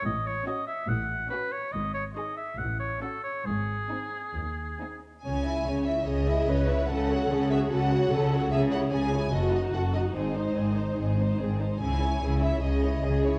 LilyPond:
<<
  \new Staff \with { instrumentName = "Violin section" } { \time 4/4 \key cis \minor \tempo 4 = 144 r4 cis'''4 r4 cis'''4 | r4 bis''4 r4 cis'''4 | r4 gis''4 r4 gis''4 | gis''4. e''8 dis''4. cis''8 |
fis''4. e''8 fis''2 | e''8 fis''8 gis''4 dis''8 dis''8 fis''8 dis''8 | bis'2. r4 | gis''4. e''8 dis''4. cis''8 | }
  \new Staff \with { instrumentName = "Oboe" } { \time 4/4 \key cis \minor dis''8 cis''8 dis''8 e''8 fis''4 b'8 cis''8 | dis''8 cis''8 dis''8 e''8 fis''8 cis''8 a'8 cis''8 | gis'2.~ gis'8 r8 | r1 |
r1 | r1 | r1 | r1 | }
  \new Staff \with { instrumentName = "Viola section" } { \time 4/4 \key cis \minor r4 cis'4 r4 cis'4 | r4 dis'4 r4 cis'4 | r4 bis4 r4 bis4 | r2 gis'4 b'4 |
a'4 gis'4 fis'4 a'4 | gis'2 fis'2 | dis'2.~ dis'8 r8 | e'4 e'4 gis'4 gis'4 | }
  \new Staff \with { instrumentName = "Violin section" } { \time 4/4 \key cis \minor r4 fis'4 r4 fis'4 | r4 gis'4 r4 fis'4 | r4 dis'4 r4 dis'4 | <cis' cis''>8 <e' e''>8 <cis' cis''>8 <e' e''>8 <cis' cis''>8 <e' e''>8 <cis' cis''>8 <e' e''>8 |
<cis' a'>8 <fis' cis''>8 <cis' a'>8 <fis' cis''>8 <cis' a'>8 <fis' cis''>8 <cis' a'>8 <fis' cis''>8 | <cis' gis'>8 <e' cis''>8 <cis' gis'>8 <e' cis''>8 <fis' a'>8 <dis' fis'>8 <fis' a'>8 <dis' fis'>8 | <bis gis'>8 <dis' bis'>8 <bis gis'>8 <dis' bis'>8 <bis gis'>8 <dis' bis'>8 <bis gis'>8 <dis' bis'>8 | <cis' gis'>8 <e' cis''>8 <cis' gis'>8 <e' cis''>8 <cis' gis'>8 <e' cis''>8 <cis' gis'>8 <e' cis''>8 | }
  \new Staff \with { instrumentName = "Cello section" } { \clef bass \time 4/4 \key cis \minor a,4 r4 a,4 r4 | gis,4 r4 a,4 r4 | gis,4 r4 dis,4 r4 | cis4 cis4 cis4 cis4 |
cis4 cis4 cis4 cis4 | cis4 cis4 fis,4 fis,4 | gis,4 gis,4 gis,4 gis,4 | cis4 cis4 cis4 cis4 | }
  \new Staff \with { instrumentName = "Double bass section" } { \clef bass \time 4/4 \key cis \minor a,,4 r4 a,,4 r4 | gis,,4 r4 a,,4 r4 | gis,,4 r4 dis,4 r4 | cis,4 cis,4 cis,4 cis,4 |
cis,4 cis,4 cis,4 cis,4 | cis,4 cis,4 fis,,4 fis,,4 | gis,,4 gis,,4 gis,,4 gis,,4 | cis,4 cis,4 cis,4 cis,4 | }
>>